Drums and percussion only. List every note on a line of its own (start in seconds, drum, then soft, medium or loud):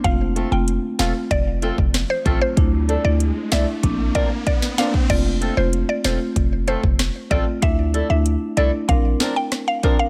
0.04 kick loud
0.04 closed hi-hat medium
0.36 closed hi-hat medium
0.68 closed hi-hat medium
0.99 snare loud
0.99 closed hi-hat medium
1.31 kick loud
1.31 closed hi-hat medium
1.62 closed hi-hat soft
1.78 kick loud
1.94 cross-stick medium
1.94 snare loud
1.94 closed hi-hat medium
2.26 kick loud
2.26 closed hi-hat medium
2.57 kick loud
2.57 closed hi-hat medium
2.89 closed hi-hat medium
3.20 closed hi-hat medium
3.52 snare loud
3.52 closed hi-hat medium
3.83 kick medium
3.83 closed hi-hat medium
4.15 kick medium
4.15 closed hi-hat medium
4.47 kick medium
4.47 closed hi-hat medium
4.62 snare medium
4.78 snare loud
4.78 closed hi-hat medium
4.94 kick medium
5.10 kick loud
5.10 closed hi-hat medium
5.10 crash loud
5.42 closed hi-hat medium
5.73 closed hi-hat medium
6.04 snare loud
6.04 closed hi-hat medium
6.36 kick loud
6.36 closed hi-hat medium
6.68 closed hi-hat medium
6.83 kick loud
6.99 cross-stick loud
6.99 snare loud
6.99 closed hi-hat medium
7.31 kick medium
7.31 closed hi-hat medium
7.62 kick loud
7.62 closed hi-hat medium
7.94 closed hi-hat medium
8.26 closed hi-hat medium
8.57 closed hi-hat medium
8.89 kick loud
8.89 closed hi-hat medium
9.20 snare loud
9.20 closed hi-hat medium
9.52 cross-stick medium
9.52 snare medium
9.52 closed hi-hat medium
9.83 kick loud
9.83 closed hi-hat medium